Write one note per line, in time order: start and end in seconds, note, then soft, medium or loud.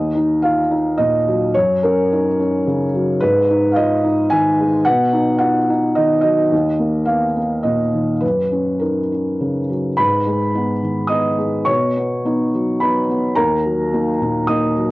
0.00 1.50 D#2 medium
0.00 0.43 D#5 medium
0.15 0.60 D#4 medium
0.42 0.72 F4 soft
0.42 0.98 F5 medium
0.71 1.16 D#4 soft
0.98 1.44 A#2 soft
0.98 1.54 D#5 medium
1.28 1.56 F#3 medium
1.54 3.18 F#2 medium
1.54 1.83 C#5 medium
1.83 2.28 C#4 medium
1.83 2.66 A#4 medium
2.12 2.39 D#4 soft
2.40 2.83 C#4 medium
2.67 3.11 C#3 medium
2.95 3.22 F#3 medium
3.21 4.82 G#2 medium
3.21 3.69 B4 loud
3.51 3.93 D#4 medium
3.72 3.77 F5 medium
3.76 4.04 F4 soft
3.76 4.31 D#5 medium
4.04 4.47 D#4 medium
4.30 4.75 D#3 medium
4.30 4.85 G#5 loud
4.60 4.87 G#3 medium
4.85 6.48 B2 medium
4.85 5.37 F#5 loud
5.13 5.57 D#4 medium
5.39 5.68 F4 soft
5.39 5.95 F#5 medium
5.70 6.13 D#4 soft
5.95 6.41 D#3 medium
5.95 6.19 D#5 medium
6.21 6.51 F#3 medium
6.21 7.06 D#5 medium
6.52 8.18 D#2 medium
6.79 7.24 A#3 soft
7.05 7.36 B3 soft
7.05 7.63 F5 medium
7.36 7.81 A#3 soft
7.63 8.11 A#2 soft
7.63 8.22 D#5 medium
7.94 8.23 D#3 soft
8.21 9.95 F#2 soft
8.21 8.80 B4 medium
8.52 8.99 C#4 soft
8.80 9.11 D#4 soft
8.80 9.69 A#4 soft
9.12 9.58 C#4 soft
9.41 9.87 C#3 soft
9.70 9.99 F#3 soft
9.97 11.65 G#2 medium
9.97 11.07 B4 medium
9.97 11.11 B5 medium
10.26 10.72 G#3 soft
10.55 10.81 B3 soft
10.55 10.81 D#4 soft
10.82 11.28 D#3 soft
11.07 11.36 B3 soft
11.07 11.37 D#4 soft
11.07 11.64 D#5 medium
11.07 11.67 D#6 medium
11.38 11.68 G#3 soft
11.65 13.33 B2 medium
11.65 12.77 C#5 medium
11.65 12.80 C#6 medium
11.97 12.24 B3 soft
12.25 12.51 B3 soft
12.25 12.51 D#4 soft
12.54 12.99 F#3 soft
12.80 13.08 B3 soft
12.80 13.08 D#4 soft
12.80 13.34 B4 medium
12.80 13.37 B5 medium
13.09 13.38 B3 soft
13.36 14.91 D#2 medium
13.36 14.43 A#4 medium
13.36 14.47 A#5 medium
13.65 14.10 F#3 soft
13.94 14.18 A#3 soft
13.94 14.18 D#4 soft
14.21 14.65 A#2 soft
14.47 14.73 A#3 soft
14.47 14.73 D#4 medium
14.47 14.91 D#5 medium
14.47 14.91 D#6 medium
14.77 14.91 F#3 medium